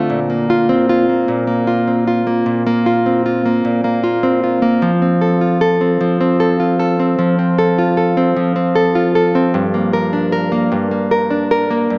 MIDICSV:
0, 0, Header, 1, 2, 480
1, 0, Start_track
1, 0, Key_signature, -1, "major"
1, 0, Tempo, 786370
1, 67, Time_signature, 6, 3, 24, 8
1, 7313, End_track
2, 0, Start_track
2, 0, Title_t, "Nylon-string guitar"
2, 0, Program_c, 0, 24
2, 0, Note_on_c, 0, 50, 76
2, 0, Note_on_c, 0, 57, 57
2, 0, Note_on_c, 0, 60, 52
2, 0, Note_on_c, 0, 65, 63
2, 59, Note_on_c, 0, 46, 81
2, 114, Note_off_c, 0, 57, 0
2, 182, Note_on_c, 0, 58, 55
2, 200, Note_off_c, 0, 60, 0
2, 302, Note_off_c, 0, 65, 0
2, 305, Note_on_c, 0, 65, 66
2, 422, Note_on_c, 0, 60, 59
2, 441, Note_off_c, 0, 50, 0
2, 543, Note_off_c, 0, 65, 0
2, 546, Note_on_c, 0, 65, 67
2, 659, Note_off_c, 0, 58, 0
2, 666, Note_on_c, 0, 58, 56
2, 775, Note_off_c, 0, 46, 0
2, 782, Note_on_c, 0, 46, 78
2, 892, Note_off_c, 0, 58, 0
2, 899, Note_on_c, 0, 58, 55
2, 1019, Note_off_c, 0, 65, 0
2, 1021, Note_on_c, 0, 65, 62
2, 1142, Note_off_c, 0, 60, 0
2, 1144, Note_on_c, 0, 60, 54
2, 1264, Note_off_c, 0, 65, 0
2, 1267, Note_on_c, 0, 65, 58
2, 1377, Note_off_c, 0, 58, 0
2, 1384, Note_on_c, 0, 58, 57
2, 1495, Note_off_c, 0, 46, 0
2, 1502, Note_on_c, 0, 46, 78
2, 1620, Note_off_c, 0, 58, 0
2, 1627, Note_on_c, 0, 58, 55
2, 1745, Note_off_c, 0, 65, 0
2, 1747, Note_on_c, 0, 65, 61
2, 1866, Note_off_c, 0, 60, 0
2, 1868, Note_on_c, 0, 60, 55
2, 1986, Note_off_c, 0, 65, 0
2, 1988, Note_on_c, 0, 65, 60
2, 2102, Note_off_c, 0, 58, 0
2, 2109, Note_on_c, 0, 58, 54
2, 2219, Note_off_c, 0, 46, 0
2, 2227, Note_on_c, 0, 46, 81
2, 2338, Note_off_c, 0, 58, 0
2, 2345, Note_on_c, 0, 58, 53
2, 2461, Note_off_c, 0, 65, 0
2, 2463, Note_on_c, 0, 65, 61
2, 2581, Note_off_c, 0, 60, 0
2, 2583, Note_on_c, 0, 60, 54
2, 2705, Note_off_c, 0, 65, 0
2, 2708, Note_on_c, 0, 65, 59
2, 2814, Note_off_c, 0, 58, 0
2, 2821, Note_on_c, 0, 58, 58
2, 2943, Note_on_c, 0, 53, 77
2, 2991, Note_off_c, 0, 58, 0
2, 2994, Note_off_c, 0, 46, 0
2, 3061, Note_off_c, 0, 60, 0
2, 3064, Note_on_c, 0, 60, 54
2, 3183, Note_on_c, 0, 69, 59
2, 3301, Note_off_c, 0, 65, 0
2, 3303, Note_on_c, 0, 65, 54
2, 3418, Note_off_c, 0, 69, 0
2, 3425, Note_on_c, 0, 69, 60
2, 3538, Note_off_c, 0, 60, 0
2, 3546, Note_on_c, 0, 60, 58
2, 3664, Note_off_c, 0, 53, 0
2, 3666, Note_on_c, 0, 53, 80
2, 3781, Note_off_c, 0, 60, 0
2, 3788, Note_on_c, 0, 60, 56
2, 3899, Note_off_c, 0, 69, 0
2, 3906, Note_on_c, 0, 69, 63
2, 4025, Note_off_c, 0, 65, 0
2, 4027, Note_on_c, 0, 65, 53
2, 4140, Note_off_c, 0, 69, 0
2, 4148, Note_on_c, 0, 69, 61
2, 4263, Note_off_c, 0, 60, 0
2, 4270, Note_on_c, 0, 60, 55
2, 4384, Note_off_c, 0, 53, 0
2, 4387, Note_on_c, 0, 53, 79
2, 4501, Note_off_c, 0, 60, 0
2, 4509, Note_on_c, 0, 60, 56
2, 4623, Note_off_c, 0, 69, 0
2, 4630, Note_on_c, 0, 69, 60
2, 4749, Note_off_c, 0, 65, 0
2, 4752, Note_on_c, 0, 65, 59
2, 4859, Note_off_c, 0, 69, 0
2, 4866, Note_on_c, 0, 69, 61
2, 4980, Note_off_c, 0, 60, 0
2, 4988, Note_on_c, 0, 60, 61
2, 5103, Note_off_c, 0, 53, 0
2, 5106, Note_on_c, 0, 53, 83
2, 5216, Note_off_c, 0, 60, 0
2, 5224, Note_on_c, 0, 60, 54
2, 5337, Note_off_c, 0, 69, 0
2, 5344, Note_on_c, 0, 69, 64
2, 5462, Note_off_c, 0, 65, 0
2, 5465, Note_on_c, 0, 65, 55
2, 5580, Note_off_c, 0, 69, 0
2, 5587, Note_on_c, 0, 69, 64
2, 5701, Note_off_c, 0, 60, 0
2, 5708, Note_on_c, 0, 60, 62
2, 5824, Note_on_c, 0, 43, 80
2, 5875, Note_off_c, 0, 69, 0
2, 5876, Note_off_c, 0, 60, 0
2, 5945, Note_on_c, 0, 58, 53
2, 6064, Note_on_c, 0, 70, 64
2, 6181, Note_off_c, 0, 65, 0
2, 6183, Note_on_c, 0, 62, 59
2, 6295, Note_off_c, 0, 70, 0
2, 6302, Note_on_c, 0, 70, 66
2, 6413, Note_off_c, 0, 58, 0
2, 6421, Note_on_c, 0, 58, 62
2, 6534, Note_off_c, 0, 43, 0
2, 6542, Note_on_c, 0, 43, 77
2, 6560, Note_off_c, 0, 53, 0
2, 6654, Note_off_c, 0, 58, 0
2, 6661, Note_on_c, 0, 58, 58
2, 6776, Note_off_c, 0, 70, 0
2, 6784, Note_on_c, 0, 70, 62
2, 6898, Note_off_c, 0, 62, 0
2, 6901, Note_on_c, 0, 62, 56
2, 7019, Note_off_c, 0, 70, 0
2, 7027, Note_on_c, 0, 70, 61
2, 7138, Note_off_c, 0, 58, 0
2, 7145, Note_on_c, 0, 58, 59
2, 7259, Note_off_c, 0, 43, 0
2, 7266, Note_on_c, 0, 43, 83
2, 7313, Note_off_c, 0, 43, 0
2, 7313, Note_off_c, 0, 58, 0
2, 7313, Note_off_c, 0, 62, 0
2, 7313, Note_off_c, 0, 70, 0
2, 7313, End_track
0, 0, End_of_file